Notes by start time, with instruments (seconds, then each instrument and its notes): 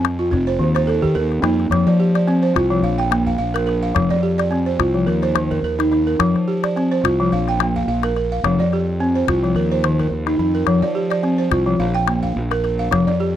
Already playing: fingered electric bass F2, balafon C4
0.05 calabash click
0.19 balafon F4
0.31 fingered electric bass F1, balafon C4, calabash thump, calabash click
0.47 balafon C5
0.59 fingered electric bass D#2, balafon D#3
0.75 balafon C5, calabash click
0.87 balafon A4, calabash click
1.02 fingered electric bass D#3, balafon G4, calabash thump
1.15 fingered electric bass D#2, balafon A#4
1.32 calabash click
1.42 fingered electric bass F2, balafon A#3 D#4, calabash click
1.60 calabash click
1.70 fingered electric bass F2, balafon F3, calabash thump, calabash click
1.86 fingered electric bass F3, balafon D5, calabash click
2.00 balafon G4
2.15 balafon D5, calabash click
2.27 balafon C4, calabash click
2.43 balafon C5
2.55 fingered electric bass C2, balafon F4, calabash thump, calabash click
2.70 balafon F3
2.83 fingered electric bass A#1, balafon F5, calabash click
2.98 balafon G5, calabash click
3.11 balafon A#3, calabash click
3.27 balafon F5, calabash thump
3.38 fingered electric bass A#1, balafon F5
3.54 balafon A#4, calabash click
3.67 balafon A#4, calabash click
3.83 balafon F5
3.95 fingered electric bass F1, balafon F3, calabash thump, calabash click
4.10 fingered electric bass F2, balafon D5, calabash click
4.23 balafon G4
4.38 balafon D5, calabash click
4.51 balafon C4, calabash click
4.66 balafon C5
4.79 fingered electric bass C2, balafon F4, calabash thump, calabash click
4.94 balafon F3
5.07 fingered electric bass D#2, balafon A#4, calabash click
5.23 balafon C5, calabash click
5.35 balafon D#3, calabash click
5.51 balafon A#4, calabash thump
5.63 fingered electric bass D#2, balafon A#4
5.79 balafon D#4, calabash click
5.92 balafon D#4, calabash click
6.07 balafon A#4
6.19 fingered electric bass F2, balafon F3, calabash thump, calabash click
6.34 fingered electric bass F3, calabash click
6.48 balafon G4
6.63 balafon D5, calabash click
6.76 balafon C4, calabash click
6.91 balafon C5
7.04 fingered electric bass C2, balafon F4, calabash thump, calabash click
7.20 balafon F3
7.32 fingered electric bass A#1, balafon F5, calabash click
7.48 balafon G5, calabash click
7.60 balafon A#3, calabash click
7.76 balafon F5, calabash thump
7.87 fingered electric bass A#1, balafon F5
8.03 balafon A#4, calabash click
8.16 balafon A#4, calabash click
8.32 balafon F5
8.43 fingered electric bass F1, balafon F3, calabash thump, calabash click
8.59 fingered electric bass F2, balafon D5
8.73 balafon G4, calabash click
9.00 balafon C4
9.15 balafon C5
9.27 fingered electric bass C2, balafon F4, calabash thump, calabash click
9.43 balafon F3, calabash click
9.55 fingered electric bass D#2, balafon A#4, calabash click
9.72 balafon C5
9.84 balafon D#3, calabash click
9.99 balafon A#4, calabash thump, calabash click
10.11 fingered electric bass D#2
10.27 balafon D#4, calabash click
10.39 fingered electric bass F2, balafon D#4
10.55 balafon A#4
10.67 fingered electric bass F2, balafon F3, calabash thump, calabash click
10.82 fingered electric bass F3, balafon D5, calabash click
10.95 balafon G4
11.10 balafon D5, calabash click
11.23 balafon C4, calabash click
11.38 balafon C5
11.51 fingered electric bass C2, balafon F4, calabash thump, calabash click
11.66 balafon F3
11.79 fingered electric bass A#1, balafon F5, calabash click
11.95 balafon G5, calabash click
12.08 balafon A#3, calabash click
12.23 balafon F5, calabash thump
12.36 fingered electric bass A#1
12.51 balafon A#4, calabash click
12.64 balafon A#4, calabash click
12.79 balafon F5
12.91 fingered electric bass F1, balafon F3, calabash thump, calabash click
13.07 fingered electric bass F2, balafon D5, calabash click
13.20 balafon G4